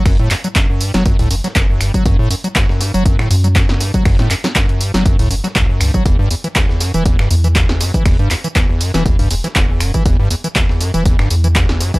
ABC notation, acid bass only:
X:1
M:4/4
L:1/16
Q:"Swing 16ths" 1/4=120
K:F#phr
V:1 name="Acid bass" clef=bass
F,, A,, F,, F, F,, F,, G,, F, F,, A,, F,, F, F,, F,, G,, F, | F,, A,, F,, F, F,, F,, G,, F, F,, A,, F,, F, F,, F,, G,, F, | F,, A,, F,, F, F,, F,, G,, F, F,, A,, F,, F, F,, F,, G,, F, | E,, G,, E,, E, E,, E,, F,, E, E,, G,, E,, E, E,, E,, F,, E, |
E,, G,, E,, E, E,, E,, F,, E, E,, G,, E,, E, E,, E,, F,, E, | E,, G,, E,, E, E,, E,, F,, E, E,, G,, E,, E, E,, E,, F,, E, |]